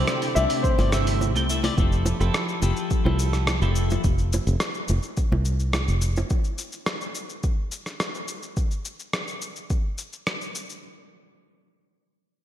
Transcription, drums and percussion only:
0.08 cross-stick medium
0.08 cabasa soft
0.22 open hi-hat soft
0.22 cabasa soft
0.36 high bongo medium
0.36 cabasa medium
0.50 open hi-hat medium
0.50 cabasa soft
0.64 kick loud
0.64 cabasa soft
0.79 open hi-hat soft
0.79 high bongo medium
0.79 cabasa soft
0.92 cross-stick medium
0.92 cabasa medium
1.07 open hi-hat medium
1.07 cabasa soft
1.21 high bongo medium
1.21 cabasa soft
1.36 cabasa soft
1.50 cabasa medium
1.64 open hi-hat medium
1.64 high bongo medium
1.64 cabasa soft
1.78 kick loud
1.78 cabasa soft
1.92 cabasa soft
2.06 high bongo medium
2.06 cabasa medium
2.21 cabasa soft
2.34 cross-stick medium
2.34 cabasa soft
2.49 cabasa soft
2.62 high bongo medium
2.62 cabasa medium
2.77 cabasa soft
2.90 kick loud
2.90 cabasa soft
3.06 high bongo medium
3.19 cabasa medium
3.33 cross-stick soft
3.33 cabasa soft
3.47 cross-stick medium
3.47 high bongo medium
3.47 cabasa soft
3.62 cabasa soft
3.76 cabasa medium
3.90 high bongo medium
3.90 cabasa soft
4.04 kick loud
4.04 cabasa soft
4.18 cabasa soft
4.33 high bongo medium
4.33 cabasa medium
4.47 cabasa soft
4.60 cross-stick loud
4.60 cabasa soft
4.74 cabasa soft
4.88 high bongo medium
4.88 cabasa medium
5.03 cabasa soft
5.17 kick loud
5.17 cabasa soft
5.32 high bongo medium
5.45 cabasa medium
5.60 cabasa soft
5.73 cross-stick medium
5.73 high bongo medium
5.73 cabasa soft
5.88 cabasa soft
6.01 cabasa medium
6.16 high bongo medium
6.16 cabasa soft
6.30 kick loud
6.30 cabasa soft
6.44 cabasa soft
6.58 cabasa medium
6.72 cabasa soft
6.86 cross-stick loud
6.86 cabasa soft
7.01 cabasa soft
7.15 cabasa medium
7.29 cabasa soft
7.43 kick loud
7.43 cabasa soft
7.72 cabasa medium
7.86 cross-stick soft
7.86 cabasa soft
8.00 cross-stick medium
8.00 cabasa soft
8.15 cabasa soft
8.28 cabasa medium
8.43 cabasa soft
8.57 kick loud
8.57 cabasa soft
8.71 cabasa soft
8.85 cabasa medium
9.00 cabasa soft
9.13 cross-stick medium
9.13 cabasa soft
9.28 cabasa soft
9.42 cabasa medium
9.56 cabasa soft
9.70 kick loud
9.70 cabasa soft
9.98 cabasa medium
10.13 cabasa soft
10.27 cross-stick medium
10.27 cabasa soft
10.41 cabasa soft
10.55 cabasa medium
10.70 cabasa soft

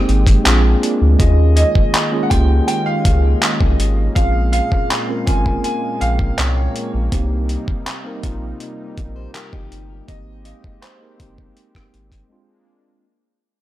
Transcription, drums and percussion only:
0.09 closed hi-hat soft
0.27 kick loud
0.27 closed hi-hat medium
0.45 clap loud
0.45 closed hi-hat medium
0.83 closed hi-hat medium
1.20 kick loud
1.20 closed hi-hat medium
1.57 closed hi-hat medium
1.75 kick loud
1.94 clap loud
1.94 closed hi-hat medium
2.31 kick loud
2.31 closed hi-hat medium
2.68 closed hi-hat medium
3.05 kick loud
3.05 closed hi-hat medium
3.42 clap loud
3.42 closed hi-hat medium
3.61 kick loud
3.80 closed hi-hat medium
4.16 kick loud
4.16 closed hi-hat medium
4.53 closed hi-hat medium
4.72 kick loud
4.91 clap loud
4.91 closed hi-hat medium
5.27 kick loud
5.27 closed hi-hat medium
5.46 kick medium
5.64 closed hi-hat medium
6.01 closed hi-hat medium
6.19 kick medium
6.38 clap loud
6.38 closed hi-hat medium
6.76 closed hi-hat medium
7.12 kick loud
7.12 closed hi-hat medium
7.49 closed hi-hat medium
7.68 kick loud
7.86 clap loud
7.86 closed hi-hat medium
8.23 kick loud
8.23 closed hi-hat medium
8.60 closed hi-hat medium
8.97 kick loud
8.97 closed hi-hat medium
9.34 clap loud
9.34 closed hi-hat medium
9.53 kick loud
9.72 closed hi-hat medium
10.08 kick loud
10.08 closed hi-hat medium
10.45 closed hi-hat medium
10.64 kick loud
10.83 clap loud
10.83 closed hi-hat medium
11.20 kick loud
11.20 closed hi-hat medium
11.38 kick medium
11.57 closed hi-hat medium
11.75 kick loud
11.75 cross-stick loud
11.94 closed hi-hat soft
12.12 kick medium
12.12 closed hi-hat medium

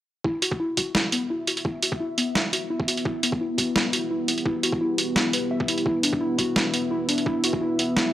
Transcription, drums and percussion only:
0.25 kick loud
0.42 closed hi-hat medium
0.52 kick medium
0.77 kick medium
0.77 closed hi-hat medium
0.95 snare loud
1.12 closed hi-hat medium
1.47 closed hi-hat medium
1.57 closed hi-hat soft
1.65 kick loud
1.82 closed hi-hat medium
1.92 kick medium
2.18 closed hi-hat medium
2.35 snare loud
2.53 closed hi-hat medium
2.80 kick loud
2.88 closed hi-hat medium
2.97 closed hi-hat soft
3.05 kick loud
3.23 closed hi-hat medium
3.32 kick loud
3.58 kick medium
3.58 closed hi-hat medium
3.76 snare loud
3.93 closed hi-hat medium
4.28 closed hi-hat medium
4.38 closed hi-hat soft
4.46 kick loud
4.63 closed hi-hat medium
4.72 kick loud
4.98 closed hi-hat medium
5.16 snare loud
5.33 closed hi-hat medium
5.60 kick loud
5.68 closed hi-hat medium
5.78 closed hi-hat soft
5.86 kick loud
6.03 closed hi-hat medium
6.13 kick loud
6.38 kick medium
6.38 closed hi-hat medium
6.56 snare loud
6.74 closed hi-hat medium
7.09 closed hi-hat medium
7.18 closed hi-hat soft
7.26 kick loud
7.44 closed hi-hat medium
7.53 kick loud
7.79 closed hi-hat medium
7.97 snare loud

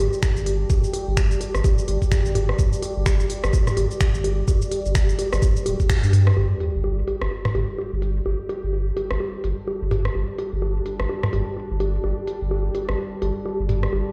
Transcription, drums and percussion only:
0.13 shaker soft
0.22 finger snap medium
0.22 kick loud
0.22 low bongo medium
0.22 shaker medium
0.37 shaker soft
0.46 open hi-hat medium
0.46 low bongo soft
0.70 kick loud
0.70 low bongo medium
0.70 shaker medium
0.84 shaker soft
0.93 open hi-hat medium
0.93 low bongo medium
1.17 finger snap medium
1.17 kick loud
1.17 low bongo soft
1.17 shaker medium
1.31 shaker soft
1.41 open hi-hat medium
1.41 low bongo medium
1.55 cross-stick medium
1.55 shaker soft
1.64 kick loud
1.64 low bongo medium
1.64 shaker medium
1.78 shaker soft
1.88 open hi-hat medium
1.88 low bongo soft
2.02 kick medium
2.02 shaker soft
2.11 finger snap medium
2.11 kick loud
2.11 low bongo medium
2.11 shaker medium
2.26 shaker soft
2.35 mid tom medium
2.35 open hi-hat medium
2.35 low bongo medium
2.49 cross-stick medium
2.59 kick loud
2.59 low bongo soft
2.59 shaker medium
2.73 shaker soft
2.82 open hi-hat medium
2.82 low bongo medium
3.06 finger snap medium
3.06 kick loud
3.06 low bongo medium
3.06 shaker medium
3.20 shaker soft
3.30 open hi-hat medium
3.30 low bongo soft
3.44 cross-stick medium
3.44 shaker soft
3.53 kick loud
3.53 low bongo medium
3.53 shaker medium
3.67 cross-stick medium
3.67 mid tom medium
3.67 shaker soft
3.77 open hi-hat medium
3.77 low bongo medium
3.91 shaker soft
4.01 finger snap medium
4.01 kick loud
4.01 low bongo soft
4.01 shaker medium
4.15 shaker soft
4.24 open hi-hat medium
4.24 low bongo medium
4.48 kick loud
4.48 low bongo medium
4.48 shaker medium
4.62 shaker soft
4.71 open hi-hat medium
4.71 low bongo soft
4.86 shaker soft
4.95 finger snap medium
4.95 kick loud
4.95 low bongo medium
4.95 shaker medium
5.09 shaker soft
5.19 open hi-hat medium
5.19 low bongo medium
5.33 cross-stick medium
5.33 shaker soft
5.42 kick loud
5.42 low bongo soft
5.42 shaker medium
5.56 shaker soft
5.66 open hi-hat medium
5.66 low bongo medium
5.80 kick medium
5.80 shaker soft
5.89 finger snap medium
5.89 kick loud
5.89 low bongo medium
5.89 shaker medium
6.04 shaker soft
6.13 mid tom medium
6.13 open hi-hat medium
6.13 low bongo soft
6.27 cross-stick medium
6.37 low bongo medium
6.60 open hi-hat medium
6.60 low bongo soft
6.84 low bongo medium
7.08 open hi-hat medium
7.08 low bongo medium
7.22 cross-stick medium
7.31 low bongo soft
7.45 cross-stick medium
7.45 mid tom medium
7.55 open hi-hat medium
7.55 low bongo medium
7.78 low bongo medium
8.02 open hi-hat medium
8.02 low bongo soft
8.26 low bongo medium
8.49 open hi-hat medium
8.49 low bongo medium
8.73 low bongo soft
8.97 open hi-hat medium
8.97 low bongo medium
9.11 cross-stick medium
9.20 low bongo medium
9.44 open hi-hat medium
9.44 low bongo soft
9.68 low bongo medium
9.91 mid tom medium
9.91 open hi-hat medium
9.91 low bongo medium
10.05 cross-stick medium
10.15 low bongo soft
10.38 open hi-hat medium
10.38 low bongo medium
10.62 low bongo medium
10.86 open hi-hat medium
10.86 low bongo soft
11.00 cross-stick medium
11.09 low bongo medium
11.23 cross-stick medium
11.23 mid tom medium
11.33 open hi-hat medium
11.33 low bongo medium
11.57 low bongo soft
11.80 open hi-hat medium
11.80 low bongo medium
12.04 low bongo medium
12.27 open hi-hat medium
12.27 low bongo soft
12.51 low bongo medium
12.75 open hi-hat medium
12.75 low bongo medium
12.89 cross-stick medium
12.98 low bongo soft
13.22 open hi-hat medium
13.22 low bongo medium
13.46 low bongo medium
13.69 mid tom medium
13.69 open hi-hat medium
13.69 low bongo soft
13.83 cross-stick medium
13.93 low bongo medium

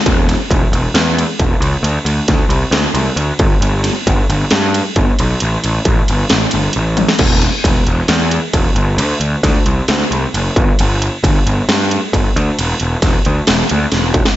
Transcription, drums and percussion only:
0.06 kick loud
0.06 ride loud
0.29 snare soft
0.29 ride medium
0.51 kick medium
0.51 ride loud
0.73 ride medium
0.95 snare loud
0.95 ride loud
1.18 ride medium
1.39 kick medium
1.39 ride medium
1.62 ride medium
1.84 ride loud
2.06 ride medium
2.28 kick medium
2.28 snare soft
2.28 ride loud
2.50 ride medium
2.72 snare loud
2.72 ride medium
2.95 ride medium
3.17 ride medium
3.39 kick loud
3.39 ride medium
3.62 ride loud
3.84 snare soft
3.84 ride medium
4.07 kick medium
4.07 ride loud
4.30 ride medium
4.51 snare loud
4.51 ride medium
4.74 ride medium
4.96 kick medium
4.96 ride medium
5.19 ride medium
5.40 ride loud
5.64 ride medium
5.85 kick medium
5.85 ride medium
6.08 ride medium
6.29 snare loud
6.29 ride medium
6.51 ride medium
6.73 ride medium
6.97 high tom medium
6.97 ride medium
7.08 snare medium
7.19 kick loud
7.19 crash loud
7.42 snare soft
7.42 ride medium
7.64 kick medium
7.64 ride loud
7.87 ride medium
8.08 snare loud
8.08 ride loud
8.31 ride medium
8.53 kick medium
8.53 ride loud
8.76 ride medium
8.98 ride loud
9.21 ride medium
9.43 kick medium
9.43 snare soft
9.43 ride loud
9.66 ride medium
9.88 snare loud
9.88 ride medium
10.12 ride medium
10.34 ride medium
10.56 kick loud
10.56 ride medium
10.79 ride loud
11.02 ride medium
11.24 kick medium
11.24 ride loud
11.47 ride medium
11.69 snare loud
11.69 ride loud
11.91 ride medium
12.13 kick medium
12.13 ride medium
12.37 ride medium
12.59 ride loud
12.80 ride medium
13.02 kick medium
13.02 snare soft
13.02 ride loud
13.25 ride medium
13.47 snare loud
13.47 ride medium
13.69 ride medium
13.92 snare medium
13.92 ride medium
14.14 kick loud
14.14 ride medium
14.25 snare loud

